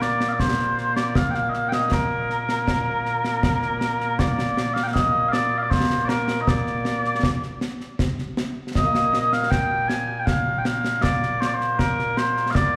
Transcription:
Already playing: A#2 A#3
0.02 D5, snare
0.20 snare
0.29 D5 F5
0.39 C5, concert bass drum, snare
0.78 snare
0.97 D5, snare
1.15 F5, concert bass drum, snare
1.31 G5, snare
1.35 F5
1.49 D#5
1.54 F5, snare
1.69 G5, snare
1.73 D#5
1.92 A#4, concert bass drum, snare
2.30 snare
2.49 snare
2.68 concert bass drum, snare
3.05 snare
3.24 snare
3.43 concert bass drum, snare
3.62 snare
3.81 snare
4.00 snare
4.19 D5, concert bass drum, snare
4.39 snare
4.57 snare
4.74 F5, snare
4.83 F5 G5
4.94 D#5, concert bass drum, snare
5.29 D5 F5
5.33 snare
5.58 F5
5.62 D5
5.71 C5, concert bass drum, snare
5.90 snare
6.05 A#4 D5, snare
6.28 snare
6.41 D#5
6.47 D5, concert bass drum, snare
6.66 snare
6.85 snare
7.04 snare
7.23 concert bass drum, snare
7.43 snare
7.61 snare
7.80 snare
7.99 concert bass drum, snare
8.19 snare
8.37 snare
8.75 A#2 A#3 D#5, concert bass drum, snare
8.95 snare
9.14 snare
9.33 F5, snare
9.50 G5, concert bass drum, snare
9.88 G#5, snare
10.20 G5
10.26 F5, concert bass drum, snare
10.58 G5
10.65 F5, snare
10.85 snare
11.02 D5, concert bass drum, snare
11.23 snare
11.41 C5, snare
11.47 D5
11.54 C5
11.61 snare
11.79 A#4, concert bass drum, snare
11.99 snare
12.17 C5, snare
12.37 snare
12.51 D5 F5
12.55 concert bass drum, snare

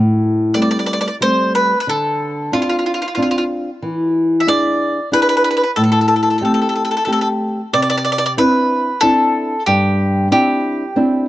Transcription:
Already playing: A2
0.54 G3 A3 C4 D5
0.62 D5
0.71 D5
0.79 D5
0.86 D5
0.93 D5
1.01 D5
1.08 D5
1.21 G3 A3 C4 C5
1.55 B4
1.80 B4
1.87 D3 A4
2.52 C4 D4 F4
2.62 F4
2.69 F4
2.79 F4
2.86 F4
2.94 F4
3.02 F4
3.08 F4
3.15 C4 D4 F4
3.23 F4
3.31 F4
3.38 F4
3.82 E3
4.40 E5
4.47 D4 E4 G#4 D5
5.12 D4 E4 G#4 B4
5.22 B4
5.29 B4
5.37 B4
5.44 B4
5.51 B4
5.57 B4
5.63 B4
5.76 A2 A4
5.84 A4
5.92 A4
6.01 A4
6.08 A4
6.16 A4
6.23 A4
6.30 A4
6.38 A3 C4 A4
6.42 G4 A4
6.54 A4
6.62 A4
6.69 A4
6.76 A4
6.85 A4
6.91 A4
6.97 A4
7.05 A3 C4 G4 A4
7.13 A4
7.21 A4
7.73 C3 D5
7.82 D5
7.90 D5
7.98 D5
8.05 D5
8.12 D5
8.18 D5
8.26 D5
8.37 C4 D4 E4 B4
9.01 C4 D4 E4 A4
9.66 G2 G4
10.31 C4 D4 E4 G4
10.96 C4 D4 E4

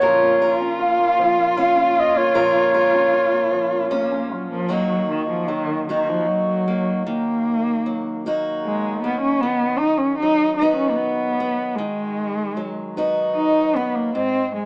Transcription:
Already playing: A#3 C#4 F#4 C#5
0.02 A#2 F3 F4 A#4
0.23 A#3
0.42 F4 A#4
0.61 C#4
0.79 F4 F5
0.98 A#3
1.19 F3
1.37 A#3
1.57 C#4 F4 F5
1.76 C#4
1.96 F4 D#5
2.15 A#3 C#5
2.35 A#2 F3 A#4
2.55 A#3
2.74 F4 A#4
2.94 C#4
3.13 F4
3.33 A#3
3.52 F3
3.72 A#3
3.91 A#3 C#4 F4
4.12 C#4
4.31 F#3 F4
4.50 F3 A#3
4.69 D#3 F#3 A#3 D#4 F#4
5.10 D#3
5.29 F3
5.48 D#3 F#3
5.88 D#3 A#3 D#4 F#4
6.09 F3
6.28 F#3
6.68 A#3
7.07 D#3 A#3
7.86 F#3
8.26 A#3 D#4 F#4
8.64 G#3
9.03 A#3 B3
9.21 C#4
9.41 D#3 B3
9.78 D#4
9.98 C#4
10.18 D#4
10.22 F#3
10.56 D#4
10.62 B3 D#4 F#4
10.76 C#4
10.90 A#3
10.96 B3
11.40 B3
11.76 D#3 G#3
12.57 F#3
12.97 B3 D#4 F#4
13.36 D#4
13.76 B3
13.95 A#3
14.15 G#2 C4
14.56 G#3

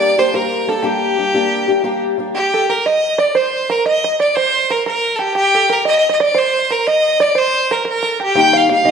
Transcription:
Already playing: G3 A#3 D4 G4 D5
0.17 A#3 D4 G4 C5
0.33 G3 A#3 D4 G4 A#4
0.67 G3 A#3 D4 G4 A4
0.82 G3 A#3 D4 G4
1.18 G3 A#3 D4 G4
1.34 G3 A#3 D4 G4
1.68 A#3 D4 G4
1.84 G3 A#3 D4 G4
2.18 G3 A#3 D4 G4
2.35 G4
2.54 A4
2.69 A#4
2.86 D#5
3.18 D5
3.35 C5
3.70 A#4
3.86 D#5
4.04 D#5
4.20 D5
4.36 C5
4.70 A#4
4.86 A#4
5.16 G4 A4
5.21 G4
5.35 G4
5.55 A4
5.69 A#4
5.85 D#5
5.98 D#5
6.09 D#5
6.20 D5
6.35 C5
6.70 A#4
6.87 D#5
7.20 D5
7.35 C5
7.71 A#4
7.85 A#4
7.89 A#4
8.03 A4
8.20 G4
8.35 D#3 G3 A#3 D#4 G4 G5
8.40 G5
8.53 F5
8.69 G3 A#3 D#4 G4 F5
8.84 D#3 G3 A#3 D#4 G4 D#5

